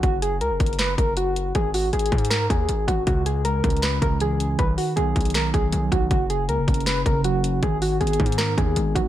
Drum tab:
HH |x-----------x-----------x-----------x---x---x---x-----------x-----------x-----------x-----------|x-----------o-----------x---x---x---x---x---x---x-----------x-----------x-----------x-----------|x-----------x-----------x-----------x---x---x---x-----------x-----------x-----------x-----------|x-----------o-----------x-----------x--x--x--x--x-----------x-----------x-----------x-----------|
CP |------------------------------------------------x-----------------------------------------------|------------------------------------------------x-----------------------------------------------|------------------------------------------------x-----------------------------------------------|------------------------------------------------x-----------------------------------------------|
SD |------------------------------------------------o-----------------------------------------------|------------------------------------------------o-----------------------------------------------|------------------------------------------------o-----------------------------------------------|------------------------------------------------o-----------------------------------------------|
BD |o-----------------------------------o-----------------------o-----------------------------------|o-----------------------------------o-----------------------o-----------------------o-----------|o-----------------------------------o-----------------------o-----------------------------------|o-----------------------------------o-----------------------o-----------------------o-----------|

HH |x-----------x-----------x-----------x---x---x---x-----------x-----------x-----------x-----------|x-----------o-----------x---x---x---x---x---x---x-----------x-----------x-----------x-----------|
CP |------------------------------------------------x-----------------------------------------------|------------------------------------------------x-----------------------------------------------|
SD |------------------------------------------------o-----------------------------------------------|------------------------------------------------o-----------------------------------------------|
BD |o-----------------------------------o-----------------------o-----------------------------------|o-----------------------------------o-----------------------o-----------------------o-----------|